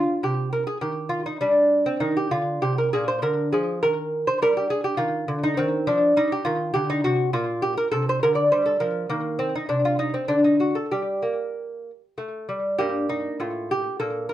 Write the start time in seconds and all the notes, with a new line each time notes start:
Already playing: F4
0.23 C3 G4
0.53 A#4
0.67 G#4
0.81 D#3 G4
1.09 F4
1.26 D#4
1.41 G3 D4
1.86 C4
2.00 D#3 D#4
2.17 G4
2.31 D3 F4
2.62 C3 G4
2.78 A#4
2.93 A#2 G#4
3.08 C5
3.22 D3 A#4
3.52 F3 G#4
3.83 D#3 A#4
4.27 C5
4.42 G3 A#4
4.57 G4
4.70 G#4
4.84 G4
4.97 D#3 F4
5.28 D3
5.43 D#4
5.57 D#3 C4
5.87 F3 D4
6.17 G3 D#4
6.32 G4
6.45 D#3 F4
6.74 D3 G4
6.90 D#4
7.04 C3 F#4
7.33 A#2 F4
7.62 G4
7.77 A#4
7.91 C3 A4
8.09 C5
8.23 D3 A#4
8.35 D5
8.52 G3 C5
8.66 A4
8.80 F3 A#4
9.10 D#3 A#3
9.39 C4
9.55 D#4
9.69 C3 D4
9.85 F4
9.99 D#4
10.14 C4
10.28 D3 D4
10.44 D#4
10.60 F#4
10.75 A4
10.91 G3 G4
11.22 A#3
12.18 A3
12.49 G3
12.78 G2 A#3 G4
13.09 D#4
13.40 A2 F4
13.71 G4
14.00 A#2 A4
14.29 A#4